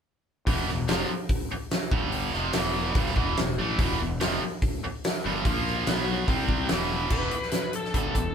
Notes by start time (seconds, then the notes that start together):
0.47 E1 E2 B2 E3, kick, open hi-hat
0.68 E1 E2 B2, snare
0.88 F1 F2 C3 F3, snare, open hi-hat
1.09 muted fingered electric bass stroke, muted distorted electric guitar stroke
1.29 kick, open hi-hat
1.51 muted fingered electric bass stroke, muted distorted electric guitar stroke
1.71 snare, open hi-hat
1.92 G1 G2 D3 G3, kick
2.12 open hi-hat
2.33 F1 F2 C3 F3, snare
2.53 E1 E2 B2 E3, snare, open hi-hat
2.95 G1 G2 D3 G3, kick, open hi-hat
3.06 snare
3.16 E1 E2 B2 E3, kick
3.37 E1 E2 B2, snare, open hi-hat
3.58 A1 A2 E3 A3
3.79 E1 E2 B2 E3, kick, open hi-hat
4.00 E1 E2 B2
4.20 F1 F2 C3 F3, snare, open hi-hat
4.42 muted distorted electric guitar stroke, muted fingered electric bass stroke
4.62 kick, open hi-hat
4.84 muted distorted electric guitar stroke, muted fingered electric bass stroke
5.04 snare, open hi-hat
5.24 G1 G2 D3 G3
5.45 A#1 A#2 F3 A#3, kick, open hi-hat
5.67 snare
5.86 B1 B2 F#3 B3, snare, open hi-hat
6.28 C2 C3 G3 C4, kick, open hi-hat
6.49 kick
6.68 E1 E2 B2 E3, snare, open hi-hat
7.10 E1 E2 B2 E3 B4, kick, crash
7.31 muted distorted electric guitar stroke, muted fingered electric bass stroke, closed hi-hat
7.42 snare
7.51 snare, closed hi-hat
7.73 A4, closed hi-hat
7.84 snare
7.94 G1 G2 D3 G3 A4, kick, closed hi-hat
8.15 E1 E2 B2, kick, closed hi-hat